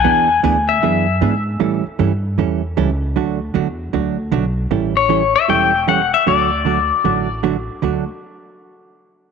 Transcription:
X:1
M:4/4
L:1/16
Q:"Swing" 1/4=154
K:D
V:1 name="Pedal steel guitar"
^g4 z2 e8 z2 | z16 | z16 | z2 c4 e2 g4 f2 e2 |
d12 z4 | z16 |]
V:2 name="Hollow-body jazz guitar"
[E,B,D^G]2 z2 [E,B,DG] z3 [E,B,DG]2 z2 [E,B,DG] z3 | [E,G,CEA]2 z2 [E,G,CEA] z3 [E,G,CEA]2 z2 [E,G,CEA] z3 | [D,F,A,DF]2 z2 [D,F,A,DF] z3 [D,F,A,DF]2 z2 [D,F,A,DF] z3 | [E,G,CEA]2 z2 [E,G,CEA] z3 [E,G,CEA]2 z2 [E,G,CEA] z3 |
[D,F,A,DF]2 z2 [D,F,A,DF] z3 [D,F,A,DF]2 z2 [D,F,A,DF] z3 | [D,F,A,DF]2 z12 z2 |]
V:3 name="Upright bass" clef=bass
E,,4 D,,4 F,,4 ^G,,4 | A,,2 z2 G,,4 E,,4 C,,4 | D,,4 E,,4 D,,4 B,,,4 | A,,,8 E,,,8 |
D,,8 A,,,8 | D,,2 z12 z2 |]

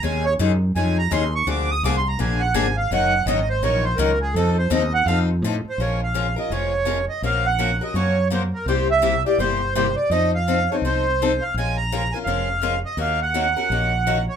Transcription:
X:1
M:4/4
L:1/16
Q:"Swing" 1/4=167
K:Bbm
V:1 name="Accordion"
a2 d2 z4 a2 b2 c'2 d'2 | =d'2 e'2 (3d'2 c'2 b2 a2 g2 a2 f2 | g4 e2 c2 d2 c2 B2 A2 | =A2 c2 e2 g2 f2 z4 c2 |
d2 f4 e2 d6 e2 | f2 g4 e2 d4 c2 B2 | c2 =e4 =d2 c4 c2 d2 | e2 f4 d2 c6 f2 |
a2 b4 a2 f6 e2 | f2 g12 d2 |]
V:2 name="Steel-string acoustic guitar"
[E,A,DEA]2 z2 [E,A,DEA] z3 [E,A,DEA]2 z2 [E,A,DEA] z3 | [=D,F,B,=DA]2 z2 [D,F,B,DA] z3 [D,F,B,DA]2 z2 [D,F,B,DA] z3 | [E,G,DEB]2 z2 [E,G,DEB] z3 [E,G,DEB]2 z2 [E,G,DEB] z3 | [F,CE=A]2 z2 [F,CEA] z3 [F,CEA]2 z2 [F,CEA] z3 |
[F,A,DFB]2 z2 [F,A,DFB] z [DFB]2 [F,A,DFB]2 z2 [F,A,DFB] z3 | [F,B,DGB]2 z2 [F,B,DGB] z [DGB]2 [F,B,DGB]2 z2 [F,B,DGB] z3 | [C,=G,B,=E=G]2 z2 [C,G,B,EG] z [B,EG]2 [C,G,B,EG]2 z2 [C,G,B,EG] z3 | [F,CE=A]2 z2 [F,CEA] z [CEA]2 [F,CEA]2 z2 [F,CEA] z3 |
[F,A,DFB]2 z2 [F,A,DFB] z [DFB]2 [F,A,DFB]2 z2 [F,A,DFB] z3 | [E,B,DGB]2 z2 [E,B,DGB] z [DGB]2 [E,B,DGB]2 z2 [E,B,DGB] z3 |]
V:3 name="Fretless electric bass" clef=bass
E,,4 G,,4 F,,4 E,,4 | =D,,4 C,,4 B,,,4 A,,,4 | G,,,4 A,,,4 B,,,4 D,,4 | F,,4 E,,4 F,,4 =A,,2 z2 |
B,,,8 F,,,8 | B,,,8 G,,8 | C,,8 =G,,,8 | F,,8 C,,8 |
B,,,8 F,,,8 | E,,8 B,,,8 |]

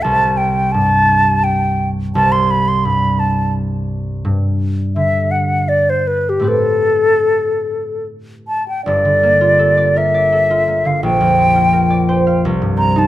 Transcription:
X:1
M:3/4
L:1/16
Q:1/4=84
K:Am
V:1 name="Flute"
a2 g2 a4 g3 z | a c' b c' b2 a2 z4 | z4 e2 ^f2 d c B G | A8 z2 a g |
[K:Gdor] d6 e4- e f | g8 z2 b a |]
V:2 name="Harp"
[C,,Ed]4 G,,8 | C,,4 G,,8 | G,,4 D,8 | [A,,A,CGB]12 |
[K:Gdor] [G,,,G,,] D, B, F A d B d A F B, D, | B,,, F,, C F B d c f C,, G,, C _E |]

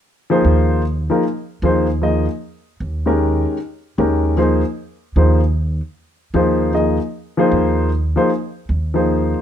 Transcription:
X:1
M:3/4
L:1/8
Q:"Swing" 1/4=153
K:Ab
V:1 name="Upright piano"
z [F,B,EAc]3 z [F,B,EAB] | z2 [F,B,EAc] z [F,B,EAe] z | z3 [E,A,DGB]3 | z2 [E,A,DGB]2 [F,B,EAc] z |
z2 [F,B,EAc] z3 | z2 [F,B,EAc]2 [F,B,EAe] z | z [F,B,EAc]3 z [F,B,EAc] | z3 [F,B,EAc]3 |]
V:2 name="Upright bass" clef=bass
z2 E,,3 z | z2 E,,3 z | z2 E,,3 z | z2 E,,3 z |
z2 E,,3 z | z2 E,,3 z | z2 E,,3 z | z2 E,,3 z |]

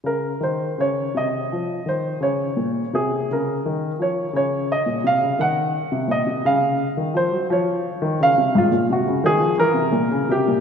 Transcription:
X:1
M:6/8
L:1/16
Q:3/8=57
K:Bbm
V:1 name="Grand piano"
B2 c2 d2 e4 c2 | d4 A2 B4 d2 | d2 e2 f2 g4 e2 | f4 c2 d4 f2 |
F2 G2 A2 B4 =G2 |]
V:2 name="Grand piano" clef=bass
D,2 E,2 D,2 C,2 F,2 E,2 | D,2 B,,2 C,2 D,2 E,2 F,2 | D,3 B,, C, D, E,3 C, B,, C, | D,3 E, F, G, F,3 E, D, C, |
A,, B,, C, D, E, F, =E, C, B,, D, C, B,, |]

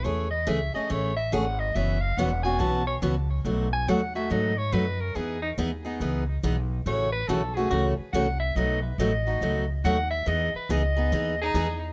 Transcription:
X:1
M:4/4
L:1/8
Q:"Swing" 1/4=141
K:E
V:1 name="Soprano saxophone"
c d e d c e f d | e =f ^f g a c z2 | z g f e d c B ^A | G D z6 |
c B A G F z f e | d B d3 z f e | d B d3 G2 z |]
V:2 name="Violin"
z8 | z8 | z8 | z8 |
z8 | z8 | z4 z D2 z |]
V:3 name="Steel-string acoustic guitar"
[E,A,CG] z [E,A,CG] [A,CG] [E,A,CG] z [E,A,CG] z | [B,,E,B,CF] z [B,,E,B,CF] [B,CF] [B,,E,B,CF] z [B,,E,B,CF] z | [B,,F,A,DF] z [B,,F,A,DF] [A,DF] [B,,F,A,DF] z [B,,F,A,DF] z | [E,B,DG] z [E,B,DG] [B,DG] [E,B,DG] z [E,B,DG] z |
[C,E,A,CF] z [C,E,A,CF] [A,CF] [C,E,A,CF] z [C,E,A,CF] z | [B,,F,A,DF] z [B,,F,A,DF] [A,DF] [B,,F,A,DF] z [B,,F,A,DF] z | [E,B,DG] z [E,B,DG] [B,DG] [E,B,DG] z [E,B,DG] z |]
V:4 name="Upright bass" clef=bass
E,,2 C,, z A,,,2 G,,,2 | F,,,2 E,,,2 B,,,2 C,,2 | B,,,2 D,,2 G,,2 F,,2 | E,,2 D,,2 C,,2 B,,,2 |
A,,,2 B,,,2 C,, z =C,,2 | B,,,2 A,,,2 C,,2 D,,2 | E,, z C,,2 D,,2 E,,2 |]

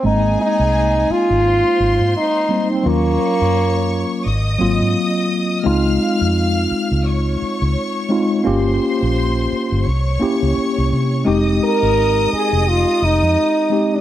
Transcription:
X:1
M:4/4
L:1/16
Q:"Swing 16ths" 1/4=86
K:Ab
V:1 name="String section"
[Aa]8 [cc']8 | [dd']8 [ee']8 | [ff']8 [dd']8 | [cc']8 [dd']8 |
[ee']16 |]
V:2 name="French horn"
E2 E4 F6 E3 C | B,8 z8 | z16 | z16 |
z2 B4 A2 F2 E4- E =D |]
V:3 name="Tine electric piano"
[A,B,CE]6 z8 [G,B,CE]2 | [_G,B,DF]6 z4 [G,B,CF]4 z2 | [A,CEF]6 z8 [A,CEF]2 | [B,DFG]6 z4 [B,D=EG]4 z2 |
[A,CEG]6 z8 [A,CEG]2 |]
V:4 name="Fingered electric bass" clef=bass
A,,,2 z C,,3 z A,,,2 z A,,, A,, z4 | E,,2 z _G,,4 z A,,,2 A,,, A,, z4 | D,,2 z F,,3 z D,,3 z D,, z4 | G,,,2 z B,,,3 z G,,, C,,2 z D,, z C,, C,2 |
F,,,2 z A,,,3 z F,,,2 z F,,, F,, z4 |]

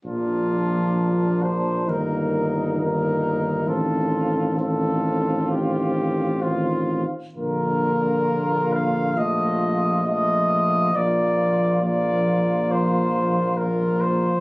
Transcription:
X:1
M:4/4
L:1/8
Q:1/4=67
K:Bb
V:1 name="Trumpet"
F3 c B2 B2 | A2 A2 G2 F z | B3 f e2 e2 | d2 d2 c2 B c |]
V:2 name="Flugelhorn"
D4 E2 E2 | F2 F4 F z | F4 F2 F2 | F2 F4 F2 |]
V:3 name="French horn"
B,4 B,2 B,2 | C2 C4 C z | B,4 A,2 A,2 | B,2 B,4 B,2 |]
V:4 name="Euphonium" clef=bass
F,4 E,2 E,2 | E,2 E,4 E, z | D,4 F,2 F,2 | F,2 F,4 F,2 |]
V:5 name="Tuba" clef=bass
B,,,4 G,,,4 | A,,,6- A,,, z | B,,,8 | B,,,8 |]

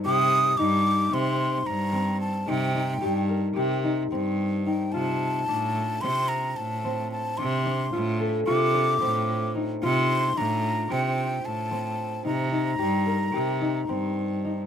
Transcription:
X:1
M:9/8
L:1/8
Q:3/8=74
K:Cdor
V:1 name="Flute"
e'2 d'2 c'2 b2 a | g3 z4 z g | a4 c' b a2 a | c'3 z d'4 z |
c'2 b2 g2 a3 | b6- b z2 |]
V:2 name="Harp"
G2 E2 C2 z C2 | E E G B G E C2 E | F2 D2 C2 z C2 | D D F A F D C2 E |
F2 D2 C2 z C2 | E E G B G E C2 E |]
V:3 name="Cello" clef=bass
C,2 G,,2 C,2 G,,3 | C,2 G,,2 C,2 G,,3 | C,2 A,,2 C,2 A,,3 | C,2 A,,2 C,2 A,,3 |
C,2 A,,2 C,2 A,,3 | C,2 G,,2 C,2 G,,3 |]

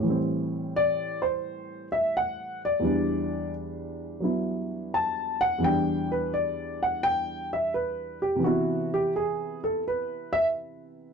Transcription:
X:1
M:4/4
L:1/16
Q:"Swing" 1/4=86
K:Em
V:1 name="Upright piano"
G z3 d2 c4 e2 f2 d2- | d4 z8 a2 f2 | g2 B2 d2 f2 g2 e2 B2 G2 | F2 G2 ^G2 A2 B2 e2 z4 |]
V:2 name="Upright piano" clef=bass
[A,,E,G,C]16 | [E,,E,G,D]8 [F,B,E]8 | [E,,E,G,D]16 | [C,E,B,E]16 |]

